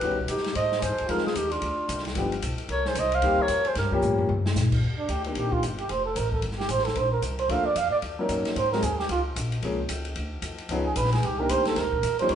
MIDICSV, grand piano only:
0, 0, Header, 1, 2, 480
1, 0, Start_track
1, 0, Tempo, 266904
1, 998, Time_signature, 4, 2, 24, 8
1, 22210, End_track
2, 0, Start_track
2, 0, Title_t, "Grand piano"
2, 0, Program_c, 0, 0
2, 40, Note_on_c, 0, 51, 58
2, 47, Note_on_c, 0, 55, 55
2, 58, Note_on_c, 0, 59, 54
2, 67, Note_on_c, 0, 61, 54
2, 71, Note_on_c, 0, 66, 67
2, 301, Note_off_c, 0, 51, 0
2, 304, Note_off_c, 0, 55, 0
2, 310, Note_off_c, 0, 59, 0
2, 314, Note_off_c, 0, 61, 0
2, 316, Note_off_c, 0, 66, 0
2, 1959, Note_on_c, 0, 53, 68
2, 1968, Note_on_c, 0, 56, 62
2, 1973, Note_on_c, 0, 60, 66
2, 1983, Note_on_c, 0, 63, 64
2, 1997, Note_on_c, 0, 68, 72
2, 2221, Note_off_c, 0, 53, 0
2, 2225, Note_off_c, 0, 56, 0
2, 2228, Note_off_c, 0, 60, 0
2, 2233, Note_off_c, 0, 63, 0
2, 2239, Note_off_c, 0, 68, 0
2, 3892, Note_on_c, 0, 53, 66
2, 3896, Note_on_c, 0, 55, 63
2, 3900, Note_on_c, 0, 59, 60
2, 3915, Note_on_c, 0, 62, 61
2, 3919, Note_on_c, 0, 67, 75
2, 4147, Note_off_c, 0, 53, 0
2, 4150, Note_off_c, 0, 55, 0
2, 4152, Note_off_c, 0, 59, 0
2, 4159, Note_off_c, 0, 62, 0
2, 4161, Note_off_c, 0, 67, 0
2, 5800, Note_on_c, 0, 51, 75
2, 5809, Note_on_c, 0, 55, 72
2, 5817, Note_on_c, 0, 58, 70
2, 5825, Note_on_c, 0, 60, 69
2, 5834, Note_on_c, 0, 67, 83
2, 6062, Note_off_c, 0, 51, 0
2, 6066, Note_off_c, 0, 55, 0
2, 6070, Note_off_c, 0, 58, 0
2, 6074, Note_off_c, 0, 60, 0
2, 6079, Note_off_c, 0, 67, 0
2, 7052, Note_on_c, 0, 53, 80
2, 7053, Note_on_c, 0, 55, 78
2, 7067, Note_on_c, 0, 58, 76
2, 7070, Note_on_c, 0, 61, 74
2, 7088, Note_on_c, 0, 67, 86
2, 7683, Note_off_c, 0, 53, 0
2, 7684, Note_off_c, 0, 55, 0
2, 7691, Note_off_c, 0, 58, 0
2, 7692, Note_off_c, 0, 61, 0
2, 7701, Note_off_c, 0, 67, 0
2, 9457, Note_on_c, 0, 51, 60
2, 9467, Note_on_c, 0, 60, 56
2, 9469, Note_on_c, 0, 58, 55
2, 9479, Note_on_c, 0, 62, 55
2, 9486, Note_on_c, 0, 67, 67
2, 10085, Note_off_c, 0, 51, 0
2, 10090, Note_off_c, 0, 60, 0
2, 10091, Note_off_c, 0, 58, 0
2, 10096, Note_off_c, 0, 62, 0
2, 10099, Note_off_c, 0, 67, 0
2, 13483, Note_on_c, 0, 53, 65
2, 13485, Note_on_c, 0, 57, 62
2, 13499, Note_on_c, 0, 58, 60
2, 13499, Note_on_c, 0, 62, 61
2, 13520, Note_on_c, 0, 69, 69
2, 13741, Note_off_c, 0, 53, 0
2, 13742, Note_off_c, 0, 57, 0
2, 13749, Note_off_c, 0, 58, 0
2, 13749, Note_off_c, 0, 62, 0
2, 13760, Note_off_c, 0, 69, 0
2, 14728, Note_on_c, 0, 54, 68
2, 14731, Note_on_c, 0, 58, 66
2, 14745, Note_on_c, 0, 61, 69
2, 14758, Note_on_c, 0, 63, 68
2, 14759, Note_on_c, 0, 70, 81
2, 15359, Note_off_c, 0, 54, 0
2, 15360, Note_off_c, 0, 58, 0
2, 15367, Note_off_c, 0, 61, 0
2, 15374, Note_off_c, 0, 63, 0
2, 15374, Note_off_c, 0, 70, 0
2, 15698, Note_on_c, 0, 54, 69
2, 15711, Note_on_c, 0, 56, 59
2, 15714, Note_on_c, 0, 60, 65
2, 15724, Note_on_c, 0, 63, 64
2, 15730, Note_on_c, 0, 68, 71
2, 15863, Note_off_c, 0, 54, 0
2, 15869, Note_off_c, 0, 56, 0
2, 15871, Note_off_c, 0, 60, 0
2, 15875, Note_off_c, 0, 63, 0
2, 15879, Note_off_c, 0, 68, 0
2, 17319, Note_on_c, 0, 53, 61
2, 17327, Note_on_c, 0, 56, 59
2, 17335, Note_on_c, 0, 58, 57
2, 17346, Note_on_c, 0, 61, 60
2, 17348, Note_on_c, 0, 68, 69
2, 17578, Note_off_c, 0, 53, 0
2, 17582, Note_off_c, 0, 56, 0
2, 17586, Note_off_c, 0, 58, 0
2, 17592, Note_off_c, 0, 61, 0
2, 17592, Note_off_c, 0, 68, 0
2, 19257, Note_on_c, 0, 53, 78
2, 19260, Note_on_c, 0, 59, 70
2, 19269, Note_on_c, 0, 61, 65
2, 19279, Note_on_c, 0, 63, 68
2, 19291, Note_on_c, 0, 68, 78
2, 19507, Note_off_c, 0, 53, 0
2, 19508, Note_off_c, 0, 59, 0
2, 19513, Note_off_c, 0, 61, 0
2, 19518, Note_off_c, 0, 63, 0
2, 19524, Note_off_c, 0, 68, 0
2, 20496, Note_on_c, 0, 51, 70
2, 20503, Note_on_c, 0, 60, 62
2, 20504, Note_on_c, 0, 58, 65
2, 20522, Note_on_c, 0, 62, 65
2, 20526, Note_on_c, 0, 67, 81
2, 21123, Note_off_c, 0, 51, 0
2, 21126, Note_off_c, 0, 60, 0
2, 21127, Note_off_c, 0, 58, 0
2, 21136, Note_off_c, 0, 62, 0
2, 21138, Note_off_c, 0, 67, 0
2, 21951, Note_on_c, 0, 55, 62
2, 21954, Note_on_c, 0, 53, 74
2, 21968, Note_on_c, 0, 61, 61
2, 21969, Note_on_c, 0, 58, 65
2, 21980, Note_on_c, 0, 63, 75
2, 22210, Note_off_c, 0, 53, 0
2, 22210, Note_off_c, 0, 55, 0
2, 22210, Note_off_c, 0, 58, 0
2, 22210, Note_off_c, 0, 61, 0
2, 22210, Note_off_c, 0, 63, 0
2, 22210, End_track
0, 0, End_of_file